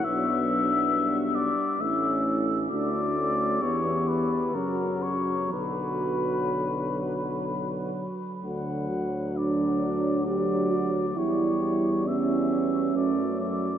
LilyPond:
<<
  \new Staff \with { instrumentName = "Flugelhorn" } { \time 3/4 \key b \minor \tempo 4 = 66 e''4. d''8 e''8 r8 | d''4 cis''8 b'8 ais'8 cis''8 | b'2~ b'8 r8 | \key d \major fis''4 d''4 d''4 |
cis''4 e''4 d''8 d''8 | }
  \new Staff \with { instrumentName = "French horn section" } { \time 3/4 \key b \minor d'2 e'4 | fis'4 g'4 fis'4 | fis'2~ fis'8 r8 | \key d \major r4 d'4 g'8 fis'8 |
e'4 cis'2 | }
  \new Staff \with { instrumentName = "Euphonium" } { \time 3/4 \key b \minor b4. r8 cis'4 | d'8 cis'8 b4 fis4 | fis2~ fis8 r8 | \key d \major fis2. |
g4 b4 a4 | }
  \new Staff \with { instrumentName = "Trombone" } { \clef bass \time 3/4 \key b \minor fis8 r8 g4 a4 | a4 e4 cis4 | d2~ d8 r8 | \key d \major d8 fis2~ fis8 |
g8 g4. fis4 | }
  \new Staff \with { instrumentName = "Tuba" } { \clef bass \time 3/4 \key b \minor b,,4. r8 a,,4 | d,4 e,4 fis,4 | b,,2~ b,,8 r8 | \key d \major d,2. |
e,2 fis,4 | }
>>